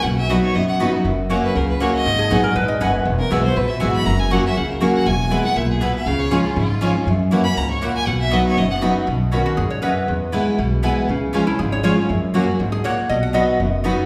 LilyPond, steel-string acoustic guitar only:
\new Staff \with { instrumentName = "Steel-string acoustic guitar" } { \time 4/4 \key b \major \tempo 4 = 239 << { r4 <fis b dis' fis'>4 r4 <fis b dis' fis'>8 <dis' fis'>8 | r4 <fis ais cis' fis'>4 r4 <fis ais cis' fis'>4 | r4 <fis b dis' gis'>8 <dis' gis'>8 r2 | r4 <e gis b fis'>8 <b fis'>8 r4 <e gis b fis'>4 |
r4 <fis ais cis' fis'>8 <cis' fis'>8 r4 <fis ais cis' fis'>4 | r4 <e gis b e'>8 <b e'>8 r2 | r4 <eis gis cis' eis'>8 <cis' eis'>8 r4 <eis gis cis' eis'>8 <cis' eis'>8 | r4 <e ais cis' fis'>8 <cis' fis'>8 r2 |
r4 <fis b dis' fis'>4 r4 <fis b dis' fis'>4 | r4 <b, dis cis' fis'>4 r2 | r4 <e gis b e'>4 r4 <e gis b e'>4 | r4 <eis gis cis' eis'>8 <cis' eis'>8 r4 <eis gis cis' eis'>8 <cis' eis'>8 |
r4 <fis ais cis' fis'>8 <cis' fis'>8 r2 | r4 <fis b dis' fis'>4 r4 <fis b dis' fis'>4 | } \\ { b,2 fis,2 | fis,2 cis2 | gis,2 gis,4 fis,4 | e,2 b,2 |
fis,2 cis2 | e,2 ais,4 b,4 | cis2 gis,2 | fis,2 gis,4 ais,4 |
b,2 fis,2 | b,2 gis,4 fis,4 | e,2 b,2 | cis2 gis,2 |
fis,2 gis,4 ais,4 | b,2 fis,2 | } >> }